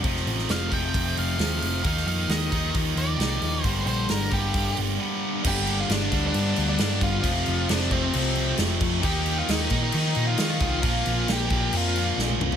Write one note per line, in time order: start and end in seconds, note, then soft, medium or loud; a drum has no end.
0.03 0.24 F1 medium
0.03 0.70 F2 medium
0.03 0.71 C3 medium
0.03 0.73 F3 medium
0.03 0.71 A3 loud
0.03 0.71 C4 loud
0.03 kick loud
0.03 open hi-hat medium
0.16 snare soft
0.26 0.46 A1 medium
0.26 open hi-hat medium
0.39 snare soft
0.49 0.68 F1 medium
0.49 0.72 F5 medium
0.49 snare loud
0.49 open hi-hat medium
0.72 0.91 F1 medium
0.72 1.84 F2 medium
0.72 1.83 C3 medium
0.72 1.85 F3 medium
0.72 1.84 A3 medium
0.72 1.83 C4 medium
0.72 1.17 G5 medium
0.72 kick medium
0.72 open hi-hat medium
0.94 1.13 F1 medium
0.94 kick loud
0.94 open hi-hat medium
1.17 1.36 F1 loud
1.17 1.83 F5 medium
1.17 open hi-hat medium
1.37 1.58 D#2 medium
1.37 1.82 F2 medium
1.37 1.82 C3 medium
1.37 snare loud
1.37 open hi-hat medium
1.41 1.85 F3 medium
1.62 1.81 F1 medium
1.62 open hi-hat medium
1.84 2.04 D#2 medium
1.84 2.51 D#3 medium
1.84 2.54 F3 medium
1.84 2.53 A#3 loud
1.84 2.51 D#4 loud
1.84 2.06 F5 medium
1.84 kick loud
1.84 open hi-hat medium
1.97 snare soft
2.06 2.25 F2 medium
2.06 2.29 F5 medium
2.06 open hi-hat medium
2.28 2.48 D#2 medium
2.28 2.74 D#5 medium
2.28 snare loud
2.28 open hi-hat medium
2.52 2.71 D#2 medium
2.52 3.65 D#3 medium
2.52 3.65 F3 medium
2.52 3.66 A#3 medium
2.52 3.64 D#4 medium
2.52 kick medium
2.52 open hi-hat medium
2.75 2.93 D#2 loud
2.75 kick loud
2.75 open hi-hat medium
2.95 3.15 D#2 loud
2.95 3.63 D5 loud
2.95 open hi-hat medium
3.18 3.38 C2 medium
3.18 3.62 D#3 medium
3.18 3.66 A#3 medium
3.18 3.64 D#4 medium
3.18 snare loud
3.18 open hi-hat medium
3.41 3.61 D#2 medium
3.41 open hi-hat medium
3.63 3.83 G1 medium
3.63 4.31 G2 medium
3.63 4.31 D3 medium
3.63 4.31 G3 medium
3.63 4.32 A#3 medium
3.63 3.85 C5 loud
3.63 kick loud
3.63 open hi-hat medium
3.67 4.31 D4 loud
3.86 4.05 A#1 medium
3.86 4.09 C5 loud
3.86 open hi-hat medium
4.09 4.28 G1 medium
4.09 4.32 A#4 medium
4.09 snare loud
4.09 open hi-hat medium
4.31 4.51 G1 medium
4.31 5.43 G2 medium
4.31 5.44 D3 medium
4.31 5.44 G3 medium
4.31 5.44 A#3 medium
4.31 5.43 D4 medium
4.31 4.76 G4 medium
4.31 kick medium
4.31 open hi-hat medium
4.54 4.73 G1 medium
4.54 kick loud
4.54 open hi-hat medium
4.77 4.97 G1 loud
4.77 open hi-hat medium
4.98 5.41 G2 medium
4.98 5.43 D3 medium
4.98 5.44 G3 medium
5.44 5.82 G1 medium
5.44 6.10 G2 medium
5.44 6.11 D3 loud
5.44 6.12 G3 medium
5.44 6.10 A#3 loud
5.44 6.10 D4 loud
5.44 5.77 G4 loud
5.44 kick loud
5.44 crash loud
5.44 crash medium
5.67 crash medium
5.80 5.92 F4 loud
5.89 6.08 G1 medium
5.89 6.25 D4 medium
5.89 snare loud
5.89 crash medium
6.11 6.30 D2 medium
6.11 7.22 G2 medium
6.11 7.23 D3 medium
6.11 7.23 G3 medium
6.11 7.22 A#3 medium
6.11 7.22 D4 medium
6.11 kick medium
6.11 crash medium
6.27 6.68 D4 loud
6.34 6.53 G2 loud
6.34 crash medium
6.56 6.76 D2 loud
6.56 crash medium
6.69 7.00 D4 loud
6.78 6.98 G2 loud
6.78 snare loud
6.78 crash medium
7.01 7.20 G1 loud
7.01 7.70 F4 loud
7.01 kick loud
7.01 crash medium
7.23 7.43 F1 medium
7.23 7.89 F2 medium
7.23 7.90 C3 loud
7.23 7.92 F3 loud
7.23 7.90 A3 loud
7.23 7.90 C4 loud
7.23 kick loud
7.23 crash medium
7.46 7.66 F1 medium
7.46 crash medium
7.69 7.88 F1 medium
7.69 7.90 D4 medium
7.69 snare loud
7.69 crash medium
7.91 8.10 F1 medium
7.91 9.03 F2 medium
7.91 9.02 C3 medium
7.91 9.04 F3 medium
7.91 9.02 A3 medium
7.91 9.02 C4 medium
7.91 8.55 C4 medium
7.91 kick medium
7.91 crash medium
8.14 8.51 C2 loud
8.14 crash loud
8.36 crash medium
8.58 8.77 F1 loud
8.58 snare loud
8.58 crash medium
8.81 9.00 F2 loud
8.81 kick loud
8.81 crash medium
9.03 9.41 D#2 loud
9.03 9.69 D#3 medium
9.03 9.73 F3 medium
9.03 9.72 A#3 loud
9.03 9.71 D#4 loud
9.03 9.39 G4 loud
9.03 kick loud
9.03 crash medium
9.26 crash medium
9.38 9.51 F4 loud
9.48 9.67 D#2 medium
9.48 9.82 D#4 medium
9.48 snare loud
9.48 crash loud
9.70 9.90 A#2 medium
9.70 10.84 F3 medium
9.70 10.84 A#3 medium
9.70 10.82 D#4 medium
9.70 kick medium
9.70 crash medium
9.74 10.83 D#3 medium
9.83 10.27 D#4 loud
9.92 10.12 D#3 loud
9.92 crash loud
10.15 10.35 A#2 loud
10.15 crash medium
10.27 10.61 F4 loud
10.38 10.57 D#3 loud
10.38 snare loud
10.38 crash medium
10.60 10.79 C2 loud
10.60 11.31 F4 loud
10.60 kick loud
10.60 crash medium
10.83 11.02 A#1 loud
10.83 11.49 A#2 medium
10.83 11.53 F3 loud
10.83 11.52 A#3 loud
10.83 11.50 C4 loud
10.83 kick loud
10.83 crash medium
11.06 11.25 A#1 loud
11.06 crash medium
11.28 11.47 A#1 medium
11.28 11.76 G4 loud
11.28 snare loud
11.28 crash medium
11.50 11.69 A#1 medium
11.50 12.56 A#2 medium
11.50 12.56 F3 medium
11.50 12.56 A#3 medium
11.50 12.56 C4 medium
11.50 kick medium
11.50 crash medium
11.73 12.10 F2 loud
11.73 12.17 F4 medium
11.73 crash medium
11.96 crash medium
12.17 12.36 A#1 loud
12.17 snare medium
12.29 high tom medium
12.40 12.56 C2 loud
12.40 mid tom loud
12.52 floor tom loud